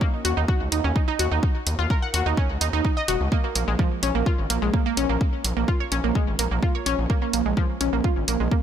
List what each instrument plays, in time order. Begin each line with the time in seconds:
0.01 synth pluck A#3, kick
0.25 analog synth bass D#2, synth pluck F#4, closed hi-hat
0.37 analog synth bass D#2, synth pluck D#4
0.48 synth pluck F#4, kick
0.61 analog synth bass C#2
0.72 analog synth bass D#2, synth pluck D#4, closed hi-hat
0.84 analog synth bass D#2, synth pluck C#4
0.96 synth pluck D#4, kick
1.08 synth pluck D#4
1.19 analog synth bass D#2, synth pluck F#4, closed hi-hat
1.32 analog synth bass D#2, synth pluck D#4
1.43 kick
1.67 analog synth bass D#2, closed hi-hat
1.79 analog synth bass D#2, synth pluck F4
1.90 synth pluck A#4, kick
2.02 synth pluck F#5
2.14 analog synth bass D#2, synth pluck F#4, closed hi-hat
2.26 analog synth bass D#2, synth pluck D#4
2.37 synth pluck C#4, kick
2.50 analog synth bass C#2
2.61 analog synth bass D#2, synth pluck D#4, closed hi-hat
2.73 analog synth bass D#2, synth pluck D#4
2.85 synth pluck D#4, kick
2.97 synth pluck D#5
3.08 analog synth bass D#1, synth pluck F#4, closed hi-hat
3.21 analog synth bass C#2
3.32 synth pluck A#3, kick
3.44 synth pluck A#3
3.55 analog synth bass A#1, synth pluck A#3, closed hi-hat
3.68 analog synth bass A#1, synth pluck G#3
3.79 synth pluck F3, kick
4.03 analog synth bass A#1, synth pluck C#4, closed hi-hat
4.15 analog synth bass A#1, synth pluck A#3
4.26 synth pluck F4, kick
4.39 analog synth bass G#1
4.50 analog synth bass A#1, synth pluck A#3, closed hi-hat
4.62 analog synth bass A#1, synth pluck G#3
4.74 synth pluck A#3, kick
4.86 synth pluck A#3
4.97 analog synth bass A#1, synth pluck C#4, closed hi-hat
5.09 analog synth bass A#1, synth pluck A#3
5.21 kick
5.44 analog synth bass A#1, closed hi-hat
5.57 analog synth bass A#1, synth pluck A#3
5.68 synth pluck F4, kick
5.80 synth pluck C#5
5.92 analog synth bass A#1, synth pluck C#4, closed hi-hat
6.04 analog synth bass A#1, synth pluck A#3
6.15 synth pluck G#3, kick
6.27 analog synth bass G#1
6.39 analog synth bass A#1, synth pluck A#3, closed hi-hat
6.51 analog synth bass A#1, synth pluck A#3
6.63 synth pluck F4, kick
6.75 synth pluck C#5
6.86 analog synth bass A#1, synth pluck C#4, closed hi-hat
6.98 analog synth bass A#1
7.10 synth pluck A#3, kick
7.22 synth pluck A#3
7.33 analog synth bass A#1, synth pluck A#3, closed hi-hat
7.46 analog synth bass A#1, synth pluck G#3
7.57 synth pluck F3, kick
7.81 analog synth bass A#1, synth pluck C#4, closed hi-hat
7.93 analog synth bass A#1, synth pluck A#3
8.04 synth pluck F4, kick
8.17 analog synth bass G#1
8.28 analog synth bass A#1, synth pluck A#3, closed hi-hat
8.40 analog synth bass A#1, synth pluck G#3
8.52 synth pluck A#3, kick